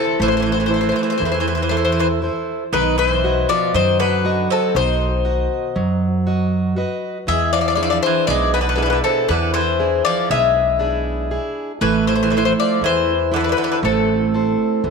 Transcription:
Already playing: C3 E3 E4 A4 C5
0.19 A1 E3 A3 C5
0.28 E3 C5
0.37 E3 C5
0.42 E3 C5
0.52 E3 C5
0.60 E3 C5
0.66 E3 E4 C5
0.70 A4 C5
0.76 E3
0.81 E3 C5
0.89 E3 C5
0.96 E3 C5
1.03 E3 C5
1.10 E3 C5
1.18 E2 E3 C5
1.25 E3 C5
1.32 E3 C5
1.40 E3 C5
1.47 E3 C5
1.55 E3 C5
1.62 E3 C5
1.69 E3 E4 A4 C5
1.77 E3 C5
1.85 E3 C5
1.92 E3 C5
1.99 E3 C5
2.22 E4 A4 C5
2.73 B1 B2 D#3 B4
2.98 E3 B4
3.10 C5
3.24 F#4 B4 D#5
3.49 F3 D5
3.74 F#2 D#3 F#3 C5
3.99 D3 B4
4.25 F#4 D#5
4.50 C3 A4
4.75 B1 B2 D#3 C5
5.25 F#4 D#5
5.76 F#2 F#3
6.27 F#4 D#5
6.76 F#4 B4 D#5
7.27 E2 E3 G#3 E5
7.53 F3 D5
7.61 F3 D5
7.68 F3 D5
7.75 F3 D4 E4 G#4 D5
7.83 F3 D5
7.90 F3 D5
8.03 E3 C5
8.27 B1 B2 G#3 D5
8.54 D3 B4
8.61 D3 B4
8.69 D3 B4
8.76 D3 D4 E4 G#4 B4
8.82 D3 B4
8.90 D3 B4
9.04 C3 A4
9.29 E2 D3 E3 B4
9.54 E3 C5
9.79 D4 E4 G#4
10.05 F3 D5
10.30 B1 B2 G#3 E5
10.79 D4 E4 G#4
11.31 D4 E4 G#4
11.81 A1 E3 A3 B4
12.07 E3 C5
12.15 E3 C5
12.23 E3 C5
12.30 E3 E4 A4 C5
12.37 E3 C5
12.45 E3 C5
12.60 F3 D5
12.81 E2 E3
12.86 C5
13.32 D3 E4 A4 C5
13.36 B4
13.40 D3 B4
13.49 D3 B4
13.57 D3 B4
13.64 D3 B4
13.71 D3 B4
13.83 A1 C3 A3 A4
14.34 E4 A4 C5
14.84 E2 E3

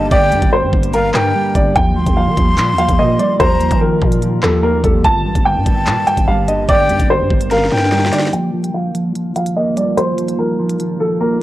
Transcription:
Already playing: D3 G3 A#3 G4
0.11 G1 G2 D5 G5, kick, closed hi-hat
0.32 G2, closed hi-hat
0.42 G1, kick, closed hi-hat
0.52 G2 C5
0.63 G2
0.73 G1 G2, kick
0.83 closed hi-hat
0.93 G2 A#4 F5, closed hi-hat
1.14 G2 G5, cross-stick, clap
1.35 G3
1.55 G1 D3 D5, kick, closed hi-hat
1.76 D#2 D#3 F3 F4 G5, kick, closed hi-hat
1.96 D2 F3 C6
2.06 D#2, kick, closed hi-hat
2.17 F3 F5
2.27 D#3
2.37 D#2 F3, kick, closed hi-hat
2.58 A#2 F3, clap, closed hi-hat
2.73 D#2
2.78 F3 F5, closed hi-hat
2.89 D#2, kick, closed hi-hat
2.99 A#2 A#3 D#5
3.19 G3 D5, closed hi-hat
3.40 D#2 F3 C5 A#5, kick, closed hi-hat
3.61 F3, closed hi-hat
3.71 D#3, kick, closed hi-hat
3.81 F3 A#4
4.02 A#2 F3, kick
4.12 closed hi-hat
4.22 F3, closed hi-hat
4.43 D#2 F3 A4, cross-stick, clap
4.63 A#3 A#4
4.84 D#2 G3 A4, kick, closed hi-hat
5.04 G1 G2 D3 G3 A#3 G4 A5, kick, closed hi-hat
5.25 A1 G2 A5
5.35 G1, kick, closed hi-hat
5.45 G2 G5
5.56 G2
5.66 G1 G2, kick, closed hi-hat
5.87 G2 A#2, clap, closed hi-hat
6.07 G2 G5, closed hi-hat
6.17 G1, kick, closed hi-hat
6.28 G1 G3 F5
6.48 D3 D#5, closed hi-hat
6.68 G1 G2 D5 G5, kick, closed hi-hat
6.89 G2, closed hi-hat
7.00 G1, kick, closed hi-hat
7.10 G2 C5
7.20 G2
7.30 G1 G2, kick
7.41 closed hi-hat
7.51 G2 A#4 F5, snare, closed hi-hat
7.58 snare
7.65 snare
7.71 G2 G5, snare
7.78 snare
7.85 snare
7.92 G3, snare
7.99 snare
8.06 snare
8.12 D3 D5, snare, closed hi-hat
8.19 snare
8.26 snare
8.33 D#3 F3 G3 A#3 F4 G5, closed hi-hat
8.53 F3
8.64 closed hi-hat
8.74 F3 F5
8.94 F3, closed hi-hat
9.15 F3, closed hi-hat
9.36 F3 F5, closed hi-hat
9.46 closed hi-hat
9.56 A#3 D#5
9.77 G3 D5, closed hi-hat
9.97 F3 C5, closed hi-hat
10.18 F3, closed hi-hat
10.28 closed hi-hat
10.39 F3 A#4
10.59 F3
10.69 closed hi-hat
10.80 F3, closed hi-hat
11.00 F3 A4
11.21 A#3 A#4

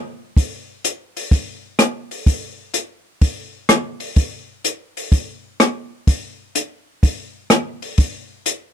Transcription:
0.37 kick, open hi-hat
0.84 closed hi-hat
1.17 open hi-hat
1.31 kick, open hi-hat
1.79 cross-stick, closed hi-hat
2.11 open hi-hat
2.26 kick, open hi-hat
2.74 closed hi-hat
3.21 kick, open hi-hat
3.69 cross-stick, closed hi-hat
4.00 open hi-hat
4.16 kick, open hi-hat
4.64 closed hi-hat
4.97 open hi-hat
5.12 kick, open hi-hat
5.60 cross-stick, closed hi-hat
6.07 kick, open hi-hat
6.55 closed hi-hat
7.03 kick, open hi-hat
7.50 cross-stick, closed hi-hat
7.82 open hi-hat
7.98 kick, open hi-hat
8.46 closed hi-hat

